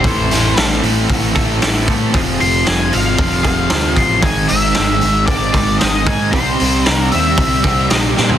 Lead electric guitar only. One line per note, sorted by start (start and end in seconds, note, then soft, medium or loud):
0.00 0.62 C5 medium
2.41 2.65 C6 loud
2.68 2.95 G#5 loud
2.93 4.01 F5 medium
3.98 4.25 C6 loud
4.22 4.50 G#5 loud
4.48 5.26 E5 loud
5.27 5.79 D5 loud
5.79 6.07 D#5 loud
6.07 6.34 G#5 medium
6.31 6.91 C5 medium
6.91 7.13 A#4 medium
7.12 7.90 E5 medium
7.90 7.97 D#5 medium